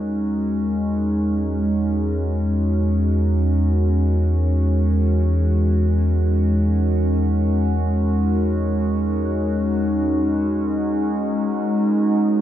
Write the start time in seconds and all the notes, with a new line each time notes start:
Already playing: E2 G#3 C#4 D#4 F#4 A#4
12.13 B1 G#3